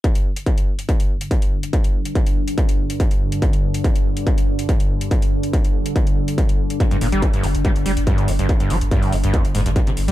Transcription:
<<
  \new Staff \with { instrumentName = "Ambient pad" } { \clef bass \time 4/4 \key c \minor \tempo 4 = 142 <g, d>1~ | <g, d>1~ | <g, d>1~ | <g, d>1~ |
<g, d>1~ | <g, d>1 | }
  \new Staff \with { instrumentName = "Acid bass" } { \clef bass \time 4/4 \key c \minor r1 | r1 | r1 | r1 |
g,16 g,16 bes,16 g16 d16 g,16 f,16 r16 g16 r16 g16 r16 g,8 f,16 g,16 | r16 g,16 g16 r16 g,8 f,16 g,16 f,16 r16 aes,16 g,16 g,16 c16 r16 g16 | }
  \new Staff \with { instrumentName = "Sub bass" } { \clef bass \time 4/4 \key c \minor r1 | r1 | r1 | r1 |
r16 g,,16 g,,16 g,,16 r16 g,,16 g,,16 g,,16 r16 g,,16 g,,16 g,,16 r16 g,,16 g,,16 g,,16 | r16 g,,16 g,,16 g,,16 r16 g,,16 g,,16 g,,16 r16 g,,16 g,,16 g,,16 r16 g,,16 g,,16 g,,16 | }
  \new DrumStaff \with { instrumentName = "Drums" } \drummode { \time 4/4 <hh bd>16 hh8 hh16 <hh bd>16 hh8 hh16 <hh bd>16 hh8 hh16 <hh bd>16 hh8 hh16 | <hh bd>16 hh8 hh16 <hh bd>16 hh8 hh16 <hh bd>16 hh8 hh16 <hh bd>16 hh8 hh16 | <hh bd>16 hh8 hh16 <hh bd>16 hh8 hh16 <hh bd>16 hh8 hh16 <hh bd>16 hh8 hh16 | <hh bd>16 hh8 hh16 <hh bd>16 hh8 hh16 <hh bd>16 hh8 hh16 <hh bd>16 hh8 hh16 |
<hh bd>16 hh16 hho16 hh16 <hh bd>16 hh16 hho16 hh16 <hh bd>16 hh16 hho16 hh16 <hh bd>16 hh16 hho16 hh16 | <hh bd>16 hh16 hho16 hh16 <hh bd>16 hho16 hho16 hh16 <hh bd>16 hh16 hho16 hh16 <hh bd>16 hh16 hho16 hh16 | }
>>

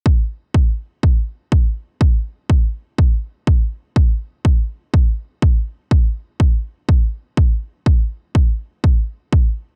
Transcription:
\new DrumStaff \with { instrumentName = "Drums" } \drummode { \time 4/4 \tempo 4 = 123 bd4 bd4 bd4 bd4 | bd4 bd4 bd4 bd4 | bd4 bd4 bd4 bd4 | bd4 bd4 bd4 bd4 |
bd4 bd4 bd4 bd4 | }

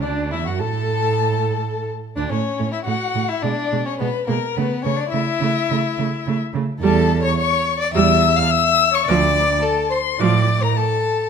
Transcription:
<<
  \new Staff \with { instrumentName = "Violin" } { \time 4/4 \key a \mixolydian \tempo 4 = 106 d''8 e''16 fis''16 a''2~ a''16 r8 d''16 | cis''8. e''16 fis''8. e''16 d''8. cis''16 b'8 bes'8 | b'8 cis''16 d''16 e''2~ e''16 r8. | \key d \minor a''8. cis'''16 cis'''8. d'''16 e'''8. f'''16 e'''8. cis'''16 |
d'''4 a''8 c'''8 d'''8. bes''16 a''4 | }
  \new Staff \with { instrumentName = "Violin" } { \time 4/4 \key a \mixolydian d'8 e'16 fis'16 a'2~ a'16 r8 d'16 | cis'8. e'16 fis'8. e'16 d'8. cis'16 b8 bes8 | b8 cis'16 d'16 e'2~ e'16 r8. | \key d \minor a'8. cis''16 cis''8. d''16 e''8. f''16 e''8. cis''16 |
d''4 a'8 c''8 d''8. bes'16 a'4 | }
  \new Staff \with { instrumentName = "Viola" } { \time 4/4 \key a \mixolydian d'8 e'16 fis'16 a'2~ a'16 r8 d'16 | a8 a8 a8 a8 gis8 gis8 gis8 gis8 | a8 a8 a8 a8 a8 a8 a8 a8 | \key d \minor g8 r4. g8 r4. |
f8 r4. f8 r4. | }
  \new Staff \with { instrumentName = "Cello" } { \clef bass \time 4/4 \key a \mixolydian d,8 e,16 fis,16 a,2~ a,16 r8 d,16 | a,8 a,8 a,8 a,8 b,8 b,8 b,8 b,8 | cis8 cis8 cis8 cis8 cis8 cis8 cis8 cis8 | \key d \minor e,4 r4 e,4 r4 |
d,4 r4 a,4 r4 | }
>>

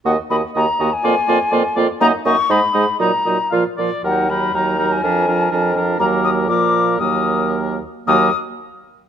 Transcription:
<<
  \new Staff \with { instrumentName = "Flute" } { \time 2/4 \key ees \minor \tempo 4 = 120 ges''8 ces'''8 bes''8. aes''16~ | aes''4. r8 | bes''8 des'''8 ces'''4 | bes''4 r4 |
ges''8 ces'''8 bes''8. aes''16~ | aes''4. r8 | bes''8 ees'''8 d'''4 | ees'''4 r4 |
ees'''8 r4. | }
  \new Staff \with { instrumentName = "Oboe" } { \time 2/4 \key ees \minor ees''8 ees''8 ees''8 ees''8 | d''8 d''8 d''8 d''8 | ees''8 ees''8 ees''8 ees''8 | ees''8 ees''8 f''8 d''8 |
bes'8 bes'8 bes'8 bes'8 | bes'8 bes'8 bes'8 bes'8 | bes'4 bes'4 | bes'4. r8 |
bes'8 r4. | }
  \new Staff \with { instrumentName = "Clarinet" } { \time 2/4 \key ees \minor ges'8 ges'8 ges'8 ges'8 | f'8 f'8 f'8 f'8 | ees'8 ees'8 ees'8 ees'8 | ees'8 ees'8 f'8 f'8 |
ees'8 ees'8 ees'8 ees'8 | d'8 d'8 d'8 d'8 | bes4 bes4 | bes4. r8 |
bes8 r4. | }
  \new Staff \with { instrumentName = "French horn" } { \clef bass \time 2/4 \key ees \minor bes8 bes8 bes8 bes8 | bes8 bes8 bes8 bes8 | bes8 bes8 aes8 aes8 | ges8 ges8 f8 f8 |
ges8 ges8 ges8 ges8 | f8 f8 f8 f8 | ges4 f4 | ges4. r8 |
ges8 r4. | }
  \new Staff \with { instrumentName = "Bassoon" } { \clef bass \time 2/4 \key ees \minor ees,8 ees,8 ees,8 ees,8 | f,8 f,8 f,8 f,8 | ges,8 ges,8 aes,8 aes,8 | bes,8 bes,8 bes,8 bes,8 |
ees,4 ees,4 | f,4 f,4 | ees,4 bes,4 | ees,4. r8 |
ees,8 r4. | }
>>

